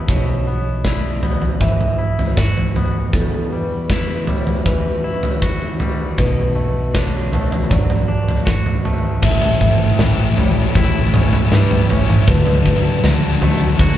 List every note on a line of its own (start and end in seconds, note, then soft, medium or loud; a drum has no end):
0.00 1.60 E3 soft
0.00 0.47 B3 medium
0.00 0.86 E4 medium
0.08 3.09 B1 medium
0.08 1.99 B2 medium
0.08 0.85 C#5 medium
0.08 kick medium
0.08 floor tom medium
0.47 1.23 B3 soft
0.85 1.97 E4 soft
0.85 1.62 D5 medium
0.85 kick medium
0.85 snare medium
1.23 2.76 B3 medium
1.23 floor tom medium
1.42 floor tom medium
1.61 3.13 E3 medium
1.61 2.37 E5 medium
1.61 kick medium
1.61 floor tom medium
1.61 mid tom medium
1.81 floor tom medium
1.99 3.13 E4 medium
2.19 floor tom medium
2.37 3.17 F#4 medium
2.37 kick medium
2.37 snare medium
2.37 mid tom medium
2.57 floor tom medium
2.76 3.52 B3 medium
2.76 floor tom medium
3.12 6.14 E2 medium
3.12 5.04 E2 medium
3.12 6.15 G3 medium
3.12 6.15 E4 medium
3.12 9.19 F#4 medium
3.12 3.52 A4 medium
3.12 9.19 B4 medium
3.12 kick medium
3.12 floor tom medium
3.51 4.27 G3 medium
3.51 4.27 B4 medium
3.90 5.03 E4 soft
3.90 kick medium
3.90 snare medium
4.27 5.79 G3 medium
4.27 4.66 C#5 medium
4.27 floor tom medium
4.47 floor tom medium
4.66 6.19 E3 medium
4.66 5.42 B4 medium
4.66 kick medium
4.66 floor tom medium
5.04 6.18 E4 medium
5.23 floor tom medium
5.42 6.18 F#4 medium
5.42 kick medium
5.80 6.18 G3 medium
5.80 floor tom medium
6.18 9.19 B1 medium
6.18 8.09 B2 medium
6.18 9.20 A3 medium
6.18 9.20 D4 medium
6.18 6.95 B4 medium
6.18 kick medium
6.18 floor tom medium
6.55 7.31 A3 medium
6.94 8.07 D4 medium
6.94 7.71 C#5 medium
6.94 kick medium
6.94 snare medium
7.33 8.84 A3 medium
7.33 floor tom medium
7.52 floor tom medium
7.70 9.23 F#3 medium
7.70 8.47 D5 medium
7.70 kick medium
7.70 floor tom medium
7.70 mid tom medium
7.90 floor tom medium
8.08 9.23 D4 medium
8.28 floor tom medium
8.45 9.22 F#4 medium
8.45 kick medium
8.45 snare medium
8.45 mid tom medium
8.66 floor tom medium
8.85 9.23 A3 medium
8.85 floor tom medium
9.22 9.53 A1 medium
9.22 11.13 A2 medium
9.22 9.29 A2 medium
9.22 9.30 E3 medium
9.22 12.24 E4 medium
9.22 12.24 A4 medium
9.22 13.98 E5 medium
9.22 9.99 E5 medium
9.22 12.24 G5 medium
9.22 kick medium
9.22 floor tom medium
9.22 crash medium
9.30 9.37 A2 soft
9.30 9.38 E3 soft
9.38 9.45 A2 soft
9.38 9.45 E3 medium
9.38 floor tom medium
9.46 9.52 A2 soft
9.46 9.53 E3 soft
9.53 9.60 A2 soft
9.53 9.61 E3 medium
9.61 9.91 A1 medium
9.61 9.68 A2 soft
9.61 9.68 E3 soft
9.61 kick medium
9.61 mid tom medium
9.68 9.74 A2 soft
9.68 9.76 E3 medium
9.75 9.83 A2 soft
9.75 9.84 E3 soft
9.84 9.91 A2 soft
9.84 9.91 E3 medium
9.92 9.98 A2 soft
9.92 9.99 E3 soft
9.98 10.28 A1 medium
9.98 10.05 A2 soft
9.98 11.89 E3 medium
9.98 10.06 E3 medium
9.98 snare medium
9.98 floor tom medium
10.06 10.13 A2 soft
10.06 10.13 E3 soft
10.14 10.21 A2 soft
10.14 10.21 E3 medium
10.21 10.29 A2 soft
10.21 10.30 E3 soft
10.30 10.36 A2 soft
10.30 10.38 E3 medium
10.37 10.66 A1 medium
10.37 10.44 A2 soft
10.37 10.43 E3 medium
10.37 11.51 G3 medium
10.37 11.14 C#5 medium
10.37 floor tom medium
10.44 10.52 A2 medium
10.44 10.51 E3 medium
10.52 10.59 A2 soft
10.52 10.59 E3 soft
10.59 10.67 A2 soft
10.59 10.68 E3 medium
10.68 10.74 A2 soft
10.68 10.75 E3 medium
10.74 11.34 A1 medium
10.74 10.81 A2 medium
10.74 10.83 E3 medium
10.74 12.28 E4 medium
10.74 kick medium
10.74 floor tom medium
10.82 10.89 A2 soft
10.82 10.91 E3 soft
10.89 10.97 A2 soft
10.89 10.98 E3 medium
10.98 11.05 A2 soft
10.98 11.05 E3 soft
11.05 11.13 A2 soft
11.05 11.13 E3 medium
11.13 11.20 A2 soft
11.13 11.20 E3 soft
11.13 11.89 C#4 medium
11.13 floor tom medium
11.13 mid tom medium
11.20 11.28 A2 soft
11.20 11.28 E3 medium
11.29 11.34 A2 soft
11.29 11.36 E3 soft
11.33 11.42 A2 soft
11.33 11.44 E3 medium
11.33 floor tom medium
11.43 11.50 A2 soft
11.43 11.51 E3 soft
11.50 11.81 G2 medium
11.50 11.58 A2 medium
11.50 11.59 E3 medium
11.50 12.27 G3 medium
11.50 11.89 B4 medium
11.50 snare medium
11.50 mid tom medium
11.59 11.66 A2 soft
11.59 11.66 E3 soft
11.66 11.73 A2 soft
11.66 11.74 E3 medium
11.71 11.81 A2 soft
11.71 11.81 E3 soft
11.71 floor tom medium
11.81 11.88 A2 soft
11.81 11.89 E3 medium
11.88 12.18 A1 medium
11.88 11.96 A2 soft
11.88 11.97 E3 soft
11.88 12.28 C#4 medium
11.88 12.27 C#5 medium
11.88 floor tom medium
11.97 12.04 A2 soft
11.97 12.03 E3 soft
12.04 12.12 A2 soft
12.04 12.11 E3 soft
12.09 12.19 A2 soft
12.09 12.19 E3 medium
12.09 mid tom medium
12.19 12.27 A2 soft
12.19 12.28 E3 soft
12.27 12.87 D2 medium
12.27 13.02 D3 medium
12.27 12.35 D3 medium
12.27 12.36 F#3 medium
12.27 13.98 D4 medium
12.27 13.98 F#4 medium
12.27 13.03 B4 medium
12.27 13.98 A5 medium
12.27 kick loud
12.27 floor tom medium
12.36 12.43 D3 soft
12.36 12.43 F#3 soft
12.44 12.51 D3 soft
12.44 12.52 F#3 medium
12.44 floor tom medium
12.51 12.58 D3 soft
12.51 12.59 F#3 soft
12.59 12.67 D3 medium
12.59 12.67 F#3 medium
12.66 12.75 D3 soft
12.66 12.75 F#3 soft
12.66 kick medium
12.75 12.82 D3 medium
12.75 12.81 F#3 medium
12.82 12.90 D3 soft
12.82 12.90 F#3 medium
12.90 12.98 D3 medium
12.90 12.98 F#3 medium
12.98 13.05 D3 soft
12.98 13.06 F#3 medium
13.03 13.33 D2 medium
13.03 13.98 D3 medium
13.03 13.13 D3 medium
13.03 13.13 F#3 medium
13.03 snare medium
13.03 floor tom medium
13.13 13.21 D3 medium
13.13 13.21 F#3 medium
13.21 13.28 D3 medium
13.21 13.28 F#3 medium
13.29 13.36 D3 soft
13.29 13.36 F#3 medium
13.36 13.44 D3 medium
13.36 13.45 F#3 medium
13.41 13.71 D2 medium
13.41 13.51 D3 medium
13.41 13.52 F#3 medium
13.41 13.98 A3 medium
13.41 floor tom medium
13.52 13.59 D3 medium
13.52 13.60 F#3 medium
13.60 13.67 D3 soft
13.60 13.68 F#3 medium
13.68 13.75 D3 medium
13.68 13.75 F#3 medium
13.75 13.98 D2 medium
13.75 13.83 D3 medium
13.75 13.83 F#3 medium
13.79 13.90 F#3 medium
13.79 13.98 F#4 medium
13.79 kick loud
13.79 floor tom medium
13.83 13.91 D3 medium
13.90 13.98 D3 soft
13.90 13.98 F#3 medium